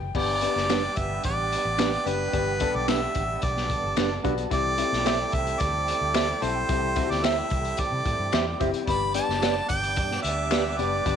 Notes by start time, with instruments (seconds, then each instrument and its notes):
Already playing: upright piano G5
0.01 fingered electric bass F#1
0.14 fingered electric bass G1, horn section G3 B3 D4 G4, tonewheel organ G3 B3 D4, upright piano B3 D4 G4, string section G4 G5, harmonica D5, kick, crash
0.41 upright piano B3 D4 G4, closed hi-hat
0.56 fingered electric bass F#1, snare
0.69 clean electric guitar D4 G4 B4, finger snap, snare, closed hi-hat
0.96 fingered electric bass G1, harmonica E5, kick, closed hi-hat
1.23 fingered electric bass A1, harmonica D5, kick, closed hi-hat
1.52 closed hi-hat
1.65 fingered electric bass A1
1.78 clean electric guitar D4 G4 B4, finger snap, snare, closed hi-hat
2.06 fingered electric bass F#1, upright piano B3 D4 G4, harmonica B4, closed hi-hat
2.32 fingered electric bass G1, upright piano B3 D4 G4, kick, closed hi-hat
2.60 upright piano B3 D4 A4, kick, closed hi-hat
2.75 fingered electric bass B1, harmonica D5
2.88 clean electric guitar D4 G4 B4, harmonica E5, finger snap, snare, closed hi-hat
3.15 fingered electric bass A1, kick, closed hi-hat
3.42 fingered electric bass B1, harmonica D5, kick, closed hi-hat
3.57 snare
3.70 string section A4 A5, kick, closed hi-hat
3.84 fingered electric bass G1
3.97 fingered electric bass F#1, clean electric guitar D4 G4 B4, finger snap, snare, closed hi-hat
4.24 fingered electric bass B1, upright piano B3 D4 F#4, clean electric guitar D4 G4 B4, kick, closed hi-hat
4.38 closed hi-hat
4.50 fingered electric bass C2, horn section A3 C4 E4 A4, upright piano C4 E4 G4, tonewheel organ C4 E4, string section G4 G5, harmonica D5, kick, closed hi-hat
4.78 upright piano C4 E4 G4, closed hi-hat
4.93 fingered electric bass B1, snare
5.05 clean electric guitar G4 C5 E5, finger snap, snare, closed hi-hat
5.32 fingered electric bass C2, harmonica E5, kick, closed hi-hat
5.47 closed hi-hat
5.60 fingered electric bass D2, harmonica D5, kick, closed hi-hat
5.88 closed hi-hat
6.01 fingered electric bass D2
6.14 clean electric guitar G4 C5 E5, finger snap, snare, closed hi-hat
6.41 fingered electric bass B1, upright piano C4 E4 A4, harmonica C5, closed hi-hat
6.68 fingered electric bass C2, upright piano C4 E4 G4, kick, closed hi-hat
6.96 upright piano C4 E4 F#4, kick, closed hi-hat
7.03 upright piano G4
7.10 fingered electric bass D2, harmonica D5, snare
7.24 clean electric guitar G4 C5 E5, harmonica E5, finger snap, snare, closed hi-hat
7.50 fingered electric bass C2, kick, closed hi-hat
7.65 closed hi-hat
7.77 harmonica D5, kick, closed hi-hat
7.92 fingered electric bass C3
8.06 fingered electric bass A2, kick, closed hi-hat
8.19 fingered electric bass G2
8.32 fingered electric bass E2, clean electric guitar G4 C5 E5, finger snap, snare, closed hi-hat
8.60 fingered electric bass F#1, upright piano C4 E4 G4, clean electric guitar G4 C5 E5, kick, closed hi-hat
8.74 closed hi-hat
8.87 fingered electric bass G1, upright piano B3 D4 G4, tonewheel organ B3 D4, string section D5 D6, harmonica B5, kick, closed hi-hat
9.14 upright piano B3 D4 G4, harmonica A5, closed hi-hat
9.29 fingered electric bass F#1, snare
9.42 clean electric guitar G4 B4 D5, finger snap, snare, closed hi-hat
9.69 fingered electric bass G1, harmonica G5, kick, closed hi-hat
9.83 closed hi-hat
9.96 fingered electric bass G2, horn section G3 B3 D4 G4, kick, closed hi-hat
10.11 snare
10.23 fingered electric bass D2, harmonica E5, closed hi-hat
10.51 clean electric guitar G4 B4 D5, finger snap, snare, closed hi-hat
10.78 fingered electric bass F#1, upright piano B3 D4 G4, harmonica D5, closed hi-hat
11.05 fingered electric bass G1, upright piano B3 D4 G4, kick, closed hi-hat